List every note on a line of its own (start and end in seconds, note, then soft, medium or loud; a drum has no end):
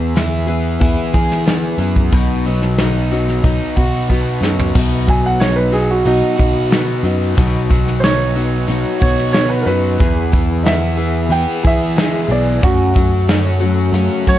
0.00 0.77 E2 medium
0.00 1.14 E2 medium
0.00 0.47 E3 medium
0.00 0.14 B3 soft
0.00 1.46 B3 medium
0.00 0.14 E4 medium
0.00 0.15 G#4 medium
0.14 0.47 E3 medium
0.14 0.48 B3 medium
0.14 0.46 E4 medium
0.14 0.46 G#4 medium
0.14 snare loud
0.14 closed hi-hat medium
0.47 1.78 E3 medium
0.47 0.79 B3 soft
0.47 0.79 E4 medium
0.47 0.80 G#4 medium
0.79 0.96 E2 medium
0.79 1.13 E3 medium
0.79 1.13 B3 medium
0.79 1.13 E4 medium
0.79 1.12 G#4 loud
0.79 kick loud
0.79 closed hi-hat medium
1.13 1.75 E3 medium
1.13 1.46 B3 soft
1.13 1.46 E4 soft
1.13 1.46 G#4 medium
1.13 kick medium
1.32 snare soft
1.46 1.79 E3 medium
1.46 1.80 B3 medium
1.46 1.79 E4 medium
1.46 1.77 G#4 medium
1.46 snare loud
1.46 closed hi-hat medium
1.78 2.08 F#2 medium
1.78 2.12 E3 medium
1.78 2.11 B3 medium
1.78 2.12 E4 medium
1.78 2.12 G#4 medium
1.96 kick medium
2.12 3.40 B1 medium
2.12 2.45 B2 medium
2.12 2.45 F#3 medium
2.12 2.45 B3 medium
2.12 2.45 D#4 medium
2.12 2.45 F#4 loud
2.12 kick loud
2.12 closed hi-hat medium
2.46 3.11 F#3 medium
2.46 2.78 B3 soft
2.46 2.79 D#4 medium
2.46 2.78 F#4 medium
2.62 snare soft
2.78 3.11 F#3 medium
2.78 3.11 B3 medium
2.78 3.12 D#4 medium
2.78 3.10 F#4 medium
2.78 snare loud
2.78 closed hi-hat medium
3.12 4.41 F#3 medium
3.12 3.43 B3 soft
3.12 3.43 D#4 medium
3.12 3.43 F#4 medium
3.29 snare soft
3.43 3.58 B1 medium
3.43 3.76 B2 medium
3.43 3.76 F#3 medium
3.43 3.77 B3 medium
3.43 3.77 D#4 medium
3.43 3.77 F#4 medium
3.43 kick loud
3.43 closed hi-hat medium
3.77 4.38 B2 medium
3.77 4.09 B3 soft
3.77 4.09 D#4 medium
3.77 4.10 F#4 medium
3.77 kick medium
4.09 4.42 F#3 medium
4.09 4.42 B3 medium
4.09 4.41 D#4 medium
4.09 4.41 F#4 medium
4.09 kick medium
4.41 4.71 F#2 medium
4.41 4.75 F#3 medium
4.41 4.74 B3 medium
4.41 4.74 D#4 medium
4.41 4.75 F#4 medium
4.41 snare medium
4.59 floor tom medium
4.74 6.02 B1 medium
4.74 5.07 B2 medium
4.74 5.08 F#3 medium
4.74 5.08 B3 medium
4.74 7.36 B3 medium
4.74 5.07 D#4 medium
4.74 7.36 D#4 medium
4.74 5.06 F#4 loud
4.74 7.36 F#4 medium
4.74 kick loud
4.74 crash loud
5.07 5.72 F#3 medium
5.07 5.39 B3 soft
5.07 5.39 D#4 soft
5.07 5.40 F#4 medium
5.07 5.24 G#5 medium
5.07 kick medium
5.26 5.40 F#5 medium
5.39 5.73 F#3 medium
5.39 5.73 B3 medium
5.39 5.72 D#4 medium
5.39 5.71 F#4 medium
5.39 5.55 C#5 medium
5.39 snare loud
5.39 closed hi-hat medium
5.56 5.72 B4 medium
5.72 7.03 F#3 medium
5.72 6.05 B3 soft
5.72 6.05 D#4 medium
5.72 6.05 F#4 medium
5.72 5.88 G#4 medium
5.91 6.05 F#4 medium
6.05 6.21 B1 medium
6.05 6.39 B2 medium
6.05 6.38 F#3 medium
6.05 6.39 B3 medium
6.05 6.37 D#4 medium
6.05 6.68 D#4 medium
6.05 6.36 F#4 medium
6.05 6.70 F#4 medium
6.05 closed hi-hat medium
6.38 7.01 B2 medium
6.38 6.70 B3 soft
6.38 6.71 D#4 soft
6.38 6.71 F#4 medium
6.38 kick medium
6.70 7.04 F#3 medium
6.70 7.04 B3 medium
6.70 7.03 D#4 medium
6.70 7.02 F#4 medium
6.70 snare loud
6.70 closed hi-hat medium
7.03 7.34 F#2 medium
7.03 7.70 F#3 medium
7.03 7.35 B3 medium
7.03 7.36 D#4 medium
7.03 7.36 F#4 medium
7.37 8.65 B1 medium
7.37 7.70 B2 medium
7.37 7.70 F#3 medium
7.37 7.70 B3 medium
7.37 9.98 B3 medium
7.37 7.70 D#4 medium
7.37 9.98 D#4 medium
7.37 7.69 F#4 medium
7.37 9.98 F#4 medium
7.37 kick loud
7.37 closed hi-hat medium
7.70 8.35 F#3 medium
7.70 8.02 B3 medium
7.70 8.02 D#4 medium
7.70 8.03 F#4 medium
7.70 kick medium
7.88 snare soft
8.00 8.36 F#3 medium
8.00 8.36 B3 medium
8.00 8.35 D#4 medium
8.00 8.04 C5 medium
8.00 8.99 C#5 loud
8.00 snare loud
8.00 closed hi-hat medium
8.04 8.34 F#4 medium
8.35 9.67 F#3 medium
8.35 8.69 B3 soft
8.35 8.69 D#4 medium
8.35 8.68 F#4 medium
8.68 8.83 B1 medium
8.68 9.02 B2 medium
8.68 9.02 F#3 medium
8.68 9.02 B3 medium
8.68 9.02 D#4 medium
8.68 9.01 F#4 medium
8.68 closed hi-hat medium
9.01 9.63 B2 medium
9.01 9.34 B3 soft
9.01 9.35 D#4 soft
9.01 9.35 F#4 medium
9.01 9.31 C#5 medium
9.01 kick medium
9.19 snare soft
9.33 9.68 F#3 medium
9.33 9.68 B3 medium
9.33 9.68 D#4 medium
9.33 9.67 F#4 medium
9.33 9.49 C#5 medium
9.33 snare loud
9.33 closed hi-hat medium
9.49 9.65 B4 medium
9.62 9.66 A#4 medium
9.66 9.96 F#2 medium
9.66 10.00 F#3 medium
9.66 9.99 B3 soft
9.66 10.00 D#4 soft
9.66 10.00 F#4 medium
9.66 10.30 B4 loud
9.99 11.64 E2 medium
9.99 11.27 E2 loud
9.99 10.33 E3 medium
9.99 10.33 B3 medium
9.99 12.60 B3 medium
9.99 10.32 E4 medium
9.99 12.60 E4 medium
9.99 12.60 G#4 medium
9.99 10.31 G#4 medium
9.99 kick loud
9.99 closed hi-hat medium
10.32 10.96 E3 medium
10.32 10.63 B3 soft
10.32 10.63 E4 soft
10.32 10.63 G#4 medium
10.32 kick medium
10.63 10.97 E3 medium
10.63 10.98 B3 medium
10.63 10.97 E4 medium
10.63 10.96 G#4 medium
10.63 10.67 D#5 medium
10.63 snare loud
10.63 closed hi-hat medium
10.67 11.30 E5 medium
10.97 12.29 E3 medium
10.97 11.29 B3 soft
10.97 11.29 E4 medium
10.97 11.29 G#4 medium
11.29 11.45 E2 medium
11.29 11.63 E3 medium
11.29 11.63 B3 medium
11.29 11.64 E4 medium
11.29 11.62 G#4 medium
11.29 11.63 G5 medium
11.29 closed hi-hat medium
11.63 12.26 E3 medium
11.63 11.95 B3 soft
11.63 11.97 E4 soft
11.63 11.96 G#4 medium
11.63 12.29 E5 medium
11.63 kick medium
11.96 12.29 E3 medium
11.96 12.62 G#3 medium
11.96 12.29 B3 medium
11.96 12.28 E4 medium
11.96 12.28 G#4 medium
11.96 snare loud
11.96 closed hi-hat medium
12.28 12.59 B1 medium
12.28 12.63 E3 medium
12.28 12.62 B3 soft
12.28 12.62 E4 medium
12.28 12.62 G#4 medium
12.28 12.62 D5 medium
12.61 12.95 F#2 medium
12.61 13.90 F#2 medium
12.61 12.95 C#3 medium
12.61 12.95 F#3 medium
12.61 12.94 A3 medium
12.61 12.94 C#4 medium
12.61 14.39 C#4 medium
12.61 12.93 F#4 medium
12.61 13.90 F#4 loud
12.61 14.39 F#4 medium
12.61 14.39 A4 medium
12.61 kick loud
12.61 closed hi-hat medium
12.94 13.26 F#3 soft
12.94 13.28 A3 soft
12.94 13.28 C#4 medium
12.94 13.28 F#4 medium
12.94 kick medium
13.28 13.61 F#3 medium
13.28 13.61 A3 medium
13.28 13.60 C#4 medium
13.28 13.58 F#4 medium
13.28 snare loud
13.28 closed hi-hat medium
13.60 13.92 F#3 medium
13.60 13.93 A3 medium
13.60 13.93 C#4 medium
13.60 13.93 F#4 medium
13.92 14.08 F#2 medium
13.92 14.26 F#2 medium
13.92 14.26 C#3 medium
13.92 14.26 F#3 medium
13.92 14.27 A3 medium
13.92 14.26 C#4 medium
13.92 14.25 F#4 medium
13.92 closed hi-hat medium
14.27 14.39 F#3 medium
14.27 14.39 F#3 soft
14.27 14.39 A3 soft
14.27 14.39 C#4 soft
14.27 14.39 F#4 medium
14.27 14.39 C#5 loud
14.27 kick medium